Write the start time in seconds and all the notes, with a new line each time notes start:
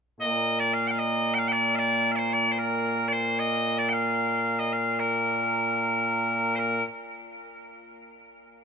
0.20 A#2 A#3 D#5
0.59 D5
0.73 F5
0.87 F5 G5
0.99 D#5
1.34 G5
1.38 F5
1.48 D5 G5
1.75 D5 F5
2.11 F5
2.16 C5 D5
2.33 D5
2.52 C5
2.59 A#4
3.08 D5
3.13 C5
3.39 D#5
3.78 D5
3.89 F5 G5
4.59 D#5
4.73 F5
5.00 A#4
6.56 A#4 C5